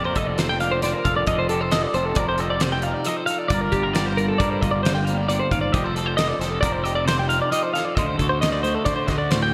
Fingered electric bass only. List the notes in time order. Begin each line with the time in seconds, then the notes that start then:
Already playing: F2
0.16 F1
1.05 F1
1.27 F1
1.94 F1
2.16 F1
3.50 G1
3.73 G1
4.40 G2
4.62 G1
5.51 G1
5.74 F1
6.39 F1
6.63 F1
7.97 D2
8.19 D2
8.86 D3
9.08 D2